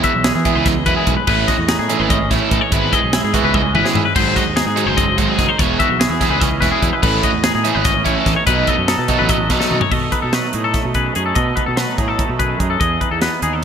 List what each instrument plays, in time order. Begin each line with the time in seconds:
Already playing: clean electric guitar E2, overdriven electric guitar E3 G#3 B3 E4
0.03 clean electric guitar F#4 E5, kick, closed hi-hat
0.15 fingered electric bass B1
0.24 clean electric guitar E4 G#4, snare, closed hi-hat
0.35 fingered electric bass E3, clean electric guitar G#4
0.45 clean electric guitar E3 G#4, overdriven electric guitar E3 G#3 B3 E4, kick, closed hi-hat
0.55 fingered electric bass C#2, clean electric guitar B4
0.65 clean electric guitar E2 D#5, kick, snare, closed hi-hat
0.86 fingered electric bass E2, clean electric guitar F#2 B4, overdriven electric guitar E3 G#3 B3 E4, kick, closed hi-hat
0.96 clean electric guitar G#4
1.07 fingered electric bass B1, clean electric guitar G#2, kick, closed hi-hat
1.17 clean electric guitar B4
1.27 fingered electric bass A1, clean electric guitar A2 B4, overdriven electric guitar E3 A3 C#4 E4, kick, crash
1.48 clean electric guitar F#4 D#5, kick, snare, closed hi-hat
1.58 fingered electric bass E2
1.68 clean electric guitar D#4 G#4, snare, closed hi-hat
1.79 fingered electric bass A2, clean electric guitar G#4
1.88 clean electric guitar E3 G#4, overdriven electric guitar E3 A3 C#4 E4, closed hi-hat
2.00 fingered electric bass G#1, clean electric guitar B4
2.10 clean electric guitar C#4 D#5, kick, closed hi-hat
2.30 fingered electric bass A1, overdriven electric guitar E3 A3 C#4 E4, clean electric guitar C#5, kick, snare, closed hi-hat
2.41 clean electric guitar A4
2.51 fingered electric bass A2, clean electric guitar E3 D#4, kick, closed hi-hat
2.61 clean electric guitar C#5
2.71 fingered electric bass G#1, clean electric guitar G#2 B4, overdriven electric guitar E3 G#3 B3 E4, kick, closed hi-hat
2.93 clean electric guitar G#4 D#5, kick, closed hi-hat
3.02 fingered electric bass B1
3.13 clean electric guitar E4 G#4, snare, closed hi-hat
3.24 fingered electric bass G#2, clean electric guitar G#4
3.34 clean electric guitar E3 F#4, overdriven electric guitar E3 G#3 B3 E4, kick, closed hi-hat
3.43 fingered electric bass C#2, clean electric guitar B4
3.54 clean electric guitar C#4 D#5, kick, high tom
3.74 fingered electric bass G#1, overdriven electric guitar E3 G#3 B3 E4, clean electric guitar B4, mid tom
3.85 clean electric guitar G#4, snare
3.94 fingered electric bass G#2, clean electric guitar G#2 E4, floor tom
4.05 clean electric guitar B4
4.15 fingered electric bass G#1, clean electric guitar G#2 C5, overdriven electric guitar D#3 F#3 C4 F#4, kick, crash
4.36 clean electric guitar F#4 D#5, kick, snare, closed hi-hat
4.46 fingered electric bass D#2
4.56 clean electric guitar D#4 G#4, snare, closed hi-hat
4.66 fingered electric bass G#2, clean electric guitar G#4
4.76 overdriven electric guitar D#3 F#3 C4 F#4, clean electric guitar G#3 G#4, closed hi-hat
4.86 fingered electric bass F#1, clean electric guitar C5
4.97 clean electric guitar C4 D#5, kick, closed hi-hat
5.18 fingered electric bass G#1, overdriven electric guitar D#3 F#3 C4 F#4, clean electric guitar C5, kick, closed hi-hat
5.29 clean electric guitar G#4
5.38 fingered electric bass F#1, clean electric guitar D#3 D#4, kick, snare, closed hi-hat
5.49 clean electric guitar C5
5.58 fingered electric bass E1, clean electric guitar E2 C#5, overdriven electric guitar E3 G#3 B3 E4, kick, closed hi-hat
5.79 clean electric guitar F#4 E5, kick, closed hi-hat
5.89 fingered electric bass B1
5.99 clean electric guitar E4 G#4, snare, closed hi-hat
6.10 fingered electric bass E2, clean electric guitar G#4
6.21 clean electric guitar E3 G#4, overdriven electric guitar E3 G#3 B3 E4, kick, snare, closed hi-hat
6.29 fingered electric bass C#2, clean electric guitar B4
6.40 clean electric guitar C#4 D#5, kick, snare, closed hi-hat
6.60 fingered electric bass E1, overdriven electric guitar E3 G#3 B3 E4, clean electric guitar B4, kick, snare, closed hi-hat
6.71 clean electric guitar G#4
6.82 fingered electric bass E2, clean electric guitar B2 E4, kick, closed hi-hat
6.93 clean electric guitar B4
7.02 fingered electric bass A1, clean electric guitar A2 B4, overdriven electric guitar E3 A3 C#4 E4, kick, crash
7.23 clean electric guitar F#4 D#5, kick, closed hi-hat
7.33 fingered electric bass E2
7.44 clean electric guitar D#4 G#4, snare, closed hi-hat
7.55 fingered electric bass A2, clean electric guitar G#4
7.63 clean electric guitar E3 G#4, overdriven electric guitar E3 A3 C#4 E4, closed hi-hat
7.75 fingered electric bass G#1, clean electric guitar B4
7.85 clean electric guitar C#4 D#5, kick, snare, closed hi-hat
8.05 fingered electric bass A1, overdriven electric guitar E3 A3 C#4 E4, clean electric guitar C#5, kick, closed hi-hat
8.15 clean electric guitar A4
8.25 fingered electric bass A1, clean electric guitar E3 D#4, kick, snare, closed hi-hat
8.36 clean electric guitar C#5
8.46 fingered electric bass B1, clean electric guitar B2 B4, overdriven electric guitar B2 F#3 A3 D#4, kick, closed hi-hat
8.67 clean electric guitar A4 D#5, kick, closed hi-hat
8.78 fingered electric bass F#2
8.88 clean electric guitar D#4 A4, snare, closed hi-hat
8.98 fingered electric bass B2, clean electric guitar A4
9.08 overdriven electric guitar B2 F#3 A3 D#4, clean electric guitar F#3 A4, kick, closed hi-hat
9.19 fingered electric bass A1, clean electric guitar B4
9.29 clean electric guitar A3 D#5, kick, closed hi-hat
9.50 fingered electric bass B1, overdriven electric guitar B2 F#3 A3 D#4, clean electric guitar B4, kick, snare, closed hi-hat
9.60 clean electric guitar A4, snare
9.70 clean electric guitar F#2 D#4, fingered electric bass B2, mid tom
9.81 clean electric guitar C#5, floor tom
9.91 clean electric guitar B2 A4 D#5, fingered electric bass B2, kick, crash
10.11 clean electric guitar D#4 B4, kick, closed hi-hat
10.22 fingered electric bass B2, clean electric guitar A4
10.32 clean electric guitar F#3 A3 B4, snare, closed hi-hat
10.53 fingered electric bass A2, clean electric guitar D#4 G#4, closed hi-hat
10.64 clean electric guitar A4
10.73 clean electric guitar A3, kick, snare, closed hi-hat
10.85 fingered electric bass B2
10.94 clean electric guitar F#2 G#4 B4, kick, closed hi-hat
11.15 fingered electric bass F#2, clean electric guitar D#4 G#4, closed hi-hat
11.26 clean electric guitar A4
11.35 clean electric guitar B2 A4 D#5, fingered electric bass B2, kick, closed hi-hat
11.56 clean electric guitar D#4 B4, kick, closed hi-hat
11.66 fingered electric bass B2, clean electric guitar A4
11.76 clean electric guitar F#3 A3 B4, snare, closed hi-hat
11.97 fingered electric bass A2, clean electric guitar D#4 G#4, kick, closed hi-hat
12.08 clean electric guitar A4
12.19 clean electric guitar A3, kick, closed hi-hat
12.29 fingered electric bass B2
12.39 clean electric guitar F#2 G#4 B4, kick, closed hi-hat
12.59 fingered electric bass F#2, clean electric guitar D#4 G#4, kick, closed hi-hat
12.70 clean electric guitar A4
12.80 clean electric guitar E2 G#4 D#5, fingered electric bass E2, kick, closed hi-hat
13.01 clean electric guitar D#4 B4, kick, closed hi-hat
13.11 fingered electric bass E2, clean electric guitar A4
13.21 clean electric guitar B3 B4, snare, closed hi-hat
13.42 fingered electric bass D#2, clean electric guitar D#4 G#4, closed hi-hat
13.53 clean electric guitar A4